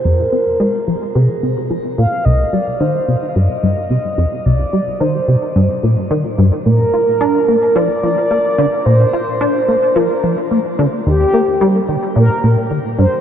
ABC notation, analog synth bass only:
X:1
M:4/4
L:1/8
Q:1/4=109
K:Cm
V:1 name="Analog synth bass" clef=bass
F,, C A, F, C, C, F, B,, | C,, G, E, C, G,, G,, C, F,, | C,, G, E, C, G,, B,, E, G,, | B,, F D B, F, F, B, D, |
B,, F D B, F, F, B, D, | E,, B, G, E, B,, B,, E, G,, |]